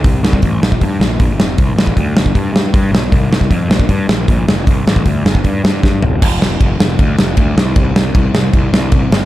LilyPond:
<<
  \new Staff \with { instrumentName = "Picked electric bass" } { \clef bass \time 4/4 \key d \dorian \tempo 4 = 155 c,8 c,8 a,,8 bes,,8 g,8 bes,,8 bes,,8 f,,8 | c,8 a,,8 d,8 g,,8 g,8 g,8 g,8 b,,8 | c,8 c,8 f,8 bes,,8 g,8 bes,,8 bes,,8 f,,8 | c,8 a,,8 d,8 g,,8 g,8 g,8 g,8 e,,8 |
f,,4 f,,8 f,,8 d,8 f,,8 d,8 c,8 | c,8 c,8 c,8 c,8 c,8 c,8 c,8 g,,8 | }
  \new DrumStaff \with { instrumentName = "Drums" } \drummode { \time 4/4 <hho bd>8 sn16 bd16 <hho bd>8 sn16 bd16 <hho bd>8 sn8 <hho bd>8 sn8 | <hho bd>8 sn16 bd16 <hho bd>8 sn16 bd16 <hho bd>8 sn8 <hho bd>8 sn8 | <hho bd>8 sn16 bd16 <hho bd>8 sn16 bd16 <hho bd>8 sn8 <hho bd>8 sn8 | <hho bd>8 sn16 bd16 <hho bd>8 sn16 bd16 <hho bd>8 sn8 <bd sn>8 tomfh8 |
<cymc bd>8 sn8 <cymc bd>8 sn8 <cymc bd>8 sn8 <cymc bd>8 sn8 | <cymc bd>8 sn8 <cymc bd>8 sn8 <cymc bd>8 sn8 <cymc bd>8 sn8 | }
>>